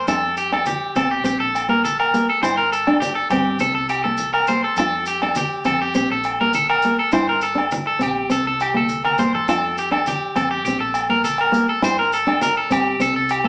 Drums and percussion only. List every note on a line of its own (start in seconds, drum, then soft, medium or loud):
0.08 muted conga soft
0.08 low agogo medium
0.08 maracas medium
0.37 maracas medium
0.52 low agogo medium
0.66 high conga medium
0.66 maracas loud
0.96 high conga medium
0.96 low agogo medium
0.96 maracas medium
1.25 muted conga soft
1.25 maracas loud
1.55 muted conga soft
1.55 low agogo medium
1.55 maracas medium
1.85 high conga medium
1.85 maracas medium
2.00 low agogo medium
2.14 maracas medium
2.43 muted conga soft
2.43 low agogo medium
2.43 maracas loud
2.73 maracas medium
2.87 low agogo medium
3.02 high conga medium
3.02 maracas loud
3.30 high conga medium
3.30 low agogo medium
3.30 maracas medium
3.59 maracas medium
3.89 muted conga soft
3.89 low agogo medium
3.89 maracas medium
4.17 high conga medium
4.17 maracas medium
4.34 low agogo medium
4.47 muted conga soft
4.47 maracas medium
4.76 muted conga soft
4.76 low agogo medium
4.76 maracas medium
5.06 maracas medium
5.22 low agogo medium
5.35 high conga loud
5.35 maracas loud
5.65 high conga medium
5.65 low agogo medium
5.65 maracas medium
5.94 maracas medium
6.24 muted conga soft
6.24 low agogo medium
6.24 maracas medium
6.53 high conga medium
6.53 maracas medium
6.70 low agogo medium
6.82 muted conga soft
6.82 maracas medium
7.12 muted conga soft
7.12 low agogo medium
7.12 maracas medium
7.41 maracas medium
7.58 low agogo medium
7.71 high conga loud
7.71 maracas loud
8.01 high conga medium
8.01 low agogo medium
8.01 maracas medium
8.30 maracas medium
8.60 muted conga soft
8.60 low agogo medium
8.60 maracas medium
8.76 high conga soft
8.89 high conga medium
8.89 maracas medium
9.04 high conga medium
9.04 low agogo medium
9.18 low conga medium
9.18 maracas medium
9.35 low conga medium
9.48 low agogo medium
9.48 maracas medium
9.78 maracas medium
9.92 low agogo medium
10.06 high conga medium
10.06 maracas medium
10.36 high conga medium
10.36 low agogo medium
10.36 maracas medium
10.65 maracas loud
10.94 muted conga soft
10.94 low agogo medium
10.94 maracas medium
11.24 high conga medium
11.24 maracas loud
11.38 low agogo medium
11.54 maracas medium
11.82 muted conga soft
11.82 low agogo medium
11.82 maracas loud
12.13 maracas medium
12.28 low agogo medium
12.41 high conga loud
12.41 maracas loud
12.71 high conga medium
12.71 low agogo medium
12.71 maracas medium
13.00 maracas loud
13.29 muted conga soft
13.29 low agogo medium
13.29 maracas medium